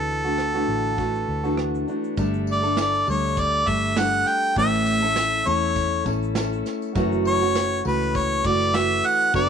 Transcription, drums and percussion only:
0.09 shaker
0.25 shaker
0.38 cross-stick, shaker
0.55 shaker
0.85 shaker
0.98 kick, shaker
1.15 shaker
1.45 shaker
1.57 cross-stick, shaker
1.75 shaker
1.88 shaker
2.04 shaker
2.17 kick, tambourine, shaker
2.34 shaker
2.47 tambourine
2.64 tambourine, shaker
2.76 snare, tambourine, shaker
2.93 shaker
3.08 tambourine
3.24 tambourine, shaker
3.37 kick, tambourine, shaker
3.54 shaker
3.67 kick, tambourine
3.83 shaker
3.96 snare, tambourine, shaker
4.14 shaker
4.26 snare, tambourine, shaker
4.43 tambourine, shaker
4.56 kick, tambourine, shaker
4.73 tambourine, shaker
4.86 tambourine, shaker
5.02 tambourine, shaker
5.15 snare, tambourine, shaker
5.33 shaker
5.46 tambourine, shaker
5.63 shaker
5.76 kick, tambourine, shaker
5.93 shaker
6.06 kick, tambourine
6.23 shaker
6.35 snare, tambourine, shaker
6.53 shaker
6.65 snare, tambourine, shaker
6.82 tambourine, shaker
6.95 kick, tambourine, shaker
7.12 shaker
7.25 tambourine
7.42 tambourine, shaker
7.55 snare, tambourine
7.72 shaker
7.85 tambourine
8.01 tambourine, shaker
8.14 kick, tambourine, shaker
8.31 shaker
8.45 kick, tambourine, shaker
8.61 shaker
8.74 snare, tambourine, shaker
8.92 shaker
9.04 tambourine, shaker
9.21 tambourine, shaker
9.34 kick, tambourine, shaker

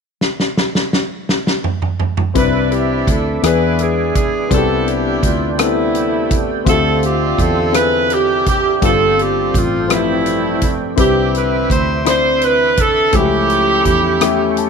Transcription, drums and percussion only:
0.21 snare
0.40 snare
0.57 snare
0.75 snare
0.93 snare
1.29 snare
1.47 snare
1.64 mid tom
1.82 mid tom
2.00 mid tom
2.17 mid tom
2.35 kick, closed hi-hat
2.72 closed hi-hat
3.07 kick, closed hi-hat
3.43 cross-stick, closed hi-hat
3.79 closed hi-hat
4.15 kick, closed hi-hat
4.51 kick, closed hi-hat
4.88 closed hi-hat
5.23 kick, closed hi-hat
5.59 cross-stick, closed hi-hat
5.95 closed hi-hat
6.31 kick, closed hi-hat
6.66 kick, closed hi-hat
7.03 closed hi-hat
7.39 kick, closed hi-hat
7.74 cross-stick, closed hi-hat
8.10 closed hi-hat
8.46 kick, closed hi-hat
8.82 kick, closed hi-hat
9.19 closed hi-hat
9.54 kick, closed hi-hat
9.90 cross-stick, closed hi-hat
10.26 closed hi-hat
10.61 kick, closed hi-hat
10.97 kick, closed hi-hat
11.35 closed hi-hat
11.70 kick, closed hi-hat
12.06 cross-stick, closed hi-hat
12.41 closed hi-hat
12.77 kick, closed hi-hat
13.13 kick, closed hi-hat
13.50 closed hi-hat
13.85 kick, closed hi-hat
14.21 cross-stick, closed hi-hat
14.57 closed hi-hat

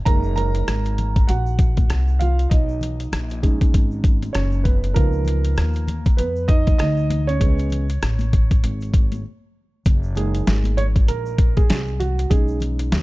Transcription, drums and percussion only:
0.06 kick, closed hi-hat, shaker
0.23 shaker
0.36 closed hi-hat, low conga, shaker
0.55 closed hi-hat, shaker
0.67 cross-stick, closed hi-hat, shaker
0.85 closed hi-hat, shaker
0.98 closed hi-hat, high conga, low conga, shaker
1.16 kick, closed hi-hat, shaker
1.29 closed hi-hat, high conga, shaker
1.46 shaker
1.59 kick, closed hi-hat, shaker
1.77 kick, closed hi-hat, high conga, shaker
1.90 cross-stick, closed hi-hat, shaker
2.08 shaker
2.21 closed hi-hat, high conga, low conga, shaker
2.39 closed hi-hat, shaker
2.51 kick, closed hi-hat, shaker
2.69 shaker
2.81 closed hi-hat, low conga, shaker
3.00 closed hi-hat, shaker
3.13 cross-stick, closed hi-hat, shaker
3.30 closed hi-hat, shaker
3.43 kick, closed hi-hat, high conga, low conga, shaker
3.61 kick, closed hi-hat, shaker
3.74 kick, closed hi-hat, high conga, shaker
3.91 shaker
4.04 kick, closed hi-hat, shaker
4.22 closed hi-hat, high conga, shaker
4.34 cross-stick, closed hi-hat, shaker
4.52 shaker
4.65 kick, closed hi-hat, high conga, low conga, shaker
4.83 closed hi-hat, shaker
4.95 kick, closed hi-hat, shaker
5.13 shaker
5.25 closed hi-hat, low conga, shaker
5.44 closed hi-hat, shaker
5.56 cross-stick, closed hi-hat, shaker
5.73 closed hi-hat, shaker
5.88 closed hi-hat, high conga, low conga, shaker
6.05 kick, closed hi-hat, shaker
6.18 closed hi-hat, high conga, shaker
6.36 shaker
6.49 kick, closed hi-hat, shaker
6.67 kick, closed hi-hat, high conga, shaker
6.79 cross-stick, closed hi-hat, shaker
6.97 shaker
7.10 closed hi-hat, high conga, low conga, shaker
7.29 closed hi-hat, shaker
7.41 kick, closed hi-hat, shaker
7.58 closed hi-hat, shaker
7.70 closed hi-hat, low conga, shaker
7.89 closed hi-hat, shaker
8.02 cross-stick, closed hi-hat, shaker
8.19 closed hi-hat, high conga, shaker
8.33 kick, closed hi-hat, high conga, low conga, shaker
8.51 kick, closed hi-hat, shaker
8.64 closed hi-hat, high conga, shaker
8.81 closed hi-hat, shaker
8.94 kick, closed hi-hat, shaker
9.12 closed hi-hat, high conga, shaker
9.86 kick, closed hi-hat, shaker
10.03 shaker
10.15 closed hi-hat, low conga, shaker
10.34 closed hi-hat, shaker
10.47 snare, closed hi-hat, shaker
10.64 closed hi-hat, high conga, shaker
10.78 closed hi-hat, high conga, low conga, shaker
10.95 kick, closed hi-hat, shaker
11.08 closed hi-hat, shaker
11.26 shaker
11.38 kick, closed hi-hat, shaker
11.57 kick, closed hi-hat, high conga, shaker
11.69 snare, closed hi-hat, shaker
11.87 shaker
12.00 closed hi-hat, low conga, shaker
12.19 closed hi-hat, shaker
12.31 kick, closed hi-hat, shaker
12.48 shaker
12.60 closed hi-hat, low conga, shaker
12.79 closed hi-hat, shaker
12.92 snare, closed hi-hat, shaker

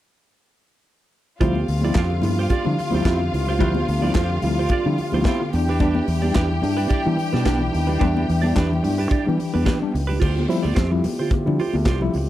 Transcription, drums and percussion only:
1.41 kick, closed hi-hat, muted conga, low conga
1.55 high conga
1.68 open hi-hat
1.81 high conga
1.94 kick, snare, clap, closed hi-hat, muted conga
2.10 muted conga
2.22 open hi-hat, high conga, low conga
2.50 kick, closed hi-hat, muted conga
2.65 muted conga
2.79 open hi-hat
2.91 high conga
3.03 kick, snare, clap, closed hi-hat, muted conga, high conga
3.19 muted conga
3.34 open hi-hat
3.47 low conga
3.58 kick, closed hi-hat, low conga
3.74 muted conga, high conga
3.88 open hi-hat
4.01 high conga
4.14 kick, snare, clap, closed hi-hat, muted conga
4.30 muted conga
4.42 open hi-hat, low conga
4.69 kick, closed hi-hat, muted conga
4.85 muted conga
4.98 open hi-hat
5.12 high conga
5.24 kick, snare, clap, closed hi-hat, high conga
5.53 open hi-hat
5.68 low conga
5.80 kick, closed hi-hat, low conga
5.95 muted conga, high conga
6.08 open hi-hat
6.23 high conga
6.34 kick, snare, clap, closed hi-hat, muted conga
6.62 open hi-hat, high conga, low conga
6.90 kick, closed hi-hat
7.07 muted conga
7.19 open hi-hat
7.33 snare, high conga
7.45 kick, snare, clap, closed hi-hat, muted conga, high conga
7.61 muted conga
7.74 open hi-hat
7.89 low conga
8.01 kick, closed hi-hat, muted conga, low conga
8.17 muted conga, high conga
8.29 open hi-hat
8.44 high conga
8.56 kick, snare, clap, closed hi-hat
8.73 muted conga
8.84 open hi-hat, low conga
9.11 kick, closed hi-hat
9.29 muted conga
9.40 open hi-hat
9.56 high conga
9.66 kick, snare, clap, closed hi-hat, high conga
9.95 open hi-hat
10.11 low conga
10.22 kick, crash, muted conga
10.38 high conga
10.50 open hi-hat
10.64 high conga
10.77 kick, snare, clap, closed hi-hat, muted conga
11.04 open hi-hat, high conga, low conga
11.31 kick, closed hi-hat, muted conga, high conga
11.47 muted conga
11.59 open hi-hat
11.73 high conga
11.86 kick, snare, clap, closed hi-hat, muted conga, high conga
12.01 muted conga
12.14 open hi-hat

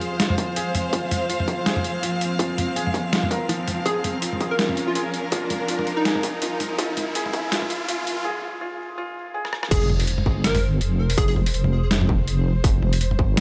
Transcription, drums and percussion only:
0.01 closed hi-hat
0.20 snare, closed hi-hat
0.30 mid tom
0.38 kick, closed hi-hat
0.56 closed hi-hat
0.75 closed hi-hat, mid tom
0.93 kick, closed hi-hat
1.11 closed hi-hat, mid tom
1.30 closed hi-hat
1.40 mid tom
1.48 kick, closed hi-hat
1.66 snare, closed hi-hat
1.76 mid tom
1.84 closed hi-hat
2.03 closed hi-hat
2.21 closed hi-hat
2.39 kick, closed hi-hat
2.58 closed hi-hat, mid tom
2.76 closed hi-hat
2.87 mid tom
2.94 kick, closed hi-hat
3.13 snare, closed hi-hat
3.23 mid tom
3.31 kick, closed hi-hat
3.49 closed hi-hat
3.68 closed hi-hat, mid tom
3.86 kick, closed hi-hat
4.04 closed hi-hat, mid tom
4.22 closed hi-hat
4.33 mid tom
4.41 kick, closed hi-hat
4.59 snare, closed hi-hat
4.69 mid tom
4.77 closed hi-hat
4.95 closed hi-hat
5.14 closed hi-hat
5.32 kick, closed hi-hat
5.50 closed hi-hat, mid tom
5.68 closed hi-hat
5.79 mid tom
5.87 closed hi-hat
6.05 snare, closed hi-hat
6.15 mid tom
6.23 kick, closed hi-hat
6.42 closed hi-hat
6.60 closed hi-hat, mid tom
6.79 kick, closed hi-hat
6.97 closed hi-hat, mid tom
7.15 closed hi-hat
7.26 mid tom
7.33 kick, closed hi-hat
7.52 snare, closed hi-hat
7.62 mid tom
7.70 closed hi-hat
7.89 closed hi-hat
8.07 closed hi-hat
9.45 cross-stick
9.53 cross-stick
9.63 cross-stick
9.71 kick, closed hi-hat, crash
9.89 mid tom
10.00 open hi-hat
10.07 closed hi-hat
10.18 mid tom
10.26 kick
10.44 snare, closed hi-hat
10.55 mid tom, open hi-hat
10.81 closed hi-hat
11.10 open hi-hat
11.18 kick, closed hi-hat
11.28 open hi-hat
11.36 mid tom
11.46 open hi-hat
11.54 closed hi-hat
11.64 mid tom
11.91 snare, closed hi-hat
12.01 mid tom
12.09 kick
12.28 closed hi-hat
12.64 kick, closed hi-hat
12.82 mid tom
12.93 open hi-hat
13.01 closed hi-hat
13.11 mid tom
13.19 kick

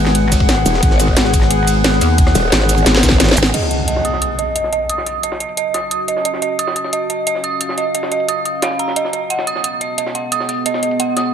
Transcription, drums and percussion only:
0.06 snare, ride
0.15 closed hi-hat, ride
0.32 kick, snare, closed hi-hat, ride, cabasa
0.40 kick, cross-stick
0.49 snare, closed hi-hat, ride
0.57 cross-stick
0.66 closed hi-hat, ride, cabasa
0.74 snare
0.83 kick, closed hi-hat, ride
0.91 snare
1.00 closed hi-hat, ride, cabasa
1.08 kick
1.17 snare, closed hi-hat, ride
1.25 snare
1.34 kick, closed hi-hat, ride, cabasa
1.42 snare
1.50 cross-stick, closed hi-hat, ride
1.67 closed hi-hat, ride, cabasa
1.84 snare, closed hi-hat, ride
1.93 snare
2.01 cross-stick, closed hi-hat, ride, cabasa
2.18 kick, closed hi-hat, ride
2.27 cross-stick, snare
2.35 closed hi-hat, open hi-hat, ride, cabasa
2.52 snare, closed hi-hat, ride
2.61 snare
2.69 closed hi-hat, ride, cabasa
2.78 ride, cabasa
2.86 snare, closed hi-hat, ride
2.95 snare, ride
2.97 snare
3.03 kick, snare, closed hi-hat, ride, cabasa
3.09 kick, snare
3.12 snare
3.20 snare, closed hi-hat, ride
3.24 snare, ride
3.28 snare, ride
3.31 snare, ride
3.37 closed hi-hat, ride, cabasa
3.43 snare, cabasa
3.45 snare
3.54 closed hi-hat, crash, ride
3.62 snare
3.71 closed hi-hat, ride
3.88 closed hi-hat, ride
3.96 snare
4.05 closed hi-hat, ride
4.13 snare
4.22 closed hi-hat, ride
4.39 closed hi-hat, ride
4.56 closed hi-hat, ride
4.64 snare
4.73 closed hi-hat, ride
4.89 closed hi-hat, ride
4.98 snare
5.06 closed hi-hat, open hi-hat
5.23 closed hi-hat, ride
5.32 snare
5.40 closed hi-hat, ride
5.49 ride
5.57 closed hi-hat, ride
5.74 snare, closed hi-hat, ride
5.91 closed hi-hat, ride
6.08 closed hi-hat, ride
6.17 snare
6.25 closed hi-hat, ride
6.34 snare
6.42 closed hi-hat, ride
6.59 closed hi-hat, ride
6.67 snare
6.76 closed hi-hat, ride
6.84 snare
6.93 closed hi-hat, ride
7.10 closed hi-hat, ride
7.27 closed hi-hat, ride
7.35 snare
7.44 closed hi-hat, ride
7.61 closed hi-hat, ride
7.69 snare
7.78 closed hi-hat, open hi-hat
7.95 closed hi-hat, ride
8.03 snare
8.12 closed hi-hat, ride
8.20 ride
8.28 closed hi-hat, ride
8.45 closed hi-hat, ride
8.62 snare, closed hi-hat, ride
8.71 snare
8.79 closed hi-hat, ride
8.88 snare
8.96 closed hi-hat, ride
9.05 snare
9.13 closed hi-hat, ride
9.30 closed hi-hat, ride
9.39 snare
9.47 closed hi-hat, ride
9.56 snare
9.64 closed hi-hat, ride
9.81 closed hi-hat, ride
9.98 closed hi-hat, ride
10.06 snare
10.15 closed hi-hat, ride
10.32 closed hi-hat, ride
10.40 snare
10.49 closed hi-hat, open hi-hat
10.66 closed hi-hat, ride
10.74 snare
10.83 closed hi-hat, ride
10.91 ride
11.00 closed hi-hat, ride
11.17 snare, closed hi-hat, ride

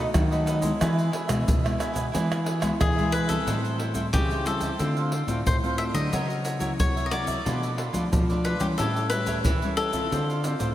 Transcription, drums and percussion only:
0.14 pandeiro, tamborim, shaker, surdo
0.32 pandeiro, shaker
0.47 pandeiro, shaker
0.62 pandeiro, shaker, surdo
0.81 pandeiro, tamborim, shaker, surdo
0.99 pandeiro, shaker
1.13 pandeiro
1.29 pandeiro, tamborim, shaker, surdo
1.48 pandeiro, shaker, surdo
1.66 pandeiro, tamborim, shaker
1.80 pandeiro, tamborim, shaker
1.96 pandeiro, shaker, surdo
2.15 pandeiro, shaker, surdo
2.32 pandeiro, tamborim, shaker
2.46 pandeiro
2.62 pandeiro, tamborim, shaker, surdo
2.81 pandeiro, tamborim, shaker, surdo
2.99 pandeiro, shaker, surdo
3.13 pandeiro, shaker
3.29 pandeiro, shaker, surdo
3.47 pandeiro, shaker, surdo
3.65 pandeiro, shaker
3.79 pandeiro
3.95 pandeiro, shaker, surdo
4.13 pandeiro, shaker, surdo
4.31 pandeiro, shaker
4.46 pandeiro, shaker
4.61 pandeiro, shaker, surdo
4.79 pandeiro, shaker, surdo
4.97 pandeiro, shaker
5.12 pandeiro
5.28 pandeiro, shaker, surdo
5.46 pandeiro, shaker, surdo
5.64 pandeiro, shaker
5.79 pandeiro
5.95 pandeiro, shaker, surdo
6.13 pandeiro, shaker, surdo
6.30 pandeiro, shaker
6.45 pandeiro, shaker
6.60 pandeiro, shaker, surdo
6.79 pandeiro, shaker, surdo
6.97 pandeiro, shaker
7.12 pandeiro, shaker
7.27 pandeiro, shaker, surdo
7.46 pandeiro, shaker, surdo
7.63 pandeiro, shaker
7.78 pandeiro
7.94 pandeiro, shaker, surdo
8.13 pandeiro, shaker, surdo
8.30 pandeiro, shaker, surdo
8.44 pandeiro
8.60 pandeiro, shaker, surdo
8.79 pandeiro, shaker, surdo
8.96 pandeiro, shaker
9.11 pandeiro, shaker
9.26 pandeiro, shaker, surdo
9.44 pandeiro, shaker, surdo
9.62 pandeiro, shaker
9.77 pandeiro
9.93 pandeiro, shaker, surdo
10.12 pandeiro, shaker, surdo
10.30 pandeiro, shaker
10.44 pandeiro, shaker
10.60 pandeiro, shaker, surdo

